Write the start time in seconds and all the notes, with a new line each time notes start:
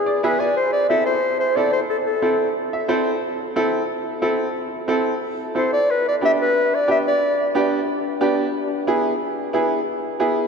Already playing: G#4
0.06 D5
0.23 B3 E4 G#4 B4 E5
0.40 D5 G#5
0.56 C5
0.73 D5
0.89 C4 E4 A4 E5
1.06 C5
1.40 C5
1.56 C4 E4 A4 D5
1.73 C5
1.90 A4
2.06 A4
2.22 C4 E4 A4
2.73 E5
2.88 C4 E4 A4 C5
3.56 C4 E4 A4
4.22 C4 E4 A4
4.88 C4 E4 A4
5.55 C4 E4 A4 C5
5.73 D5
5.91 B4
6.08 D5
6.21 B3 D4 G4 E5
6.41 B4
6.75 D5
6.88 B3 D4 G4 E5
7.08 D5
7.55 B3 D4 G4
8.21 B3 D4 G4
8.87 B3 E4 G#4
9.53 B3 E4 G#4
10.20 B3 E4 G#4